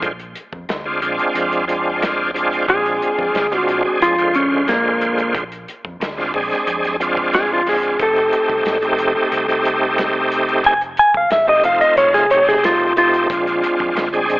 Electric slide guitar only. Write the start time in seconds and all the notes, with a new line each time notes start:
2.70 G#4
3.57 F#4
4.02 F4
4.36 C#4
4.69 A#3
7.35 G#4
7.53 F4
7.69 G#4
8.02 A4
10.66 G#5
10.99 G#5
11.17 F5
11.32 E5
11.49 D#5
11.65 F5
11.81 D#5
11.98 C#5
12.14 G#4
12.31 C#5
12.49 G#4
12.65 F4
12.98 F4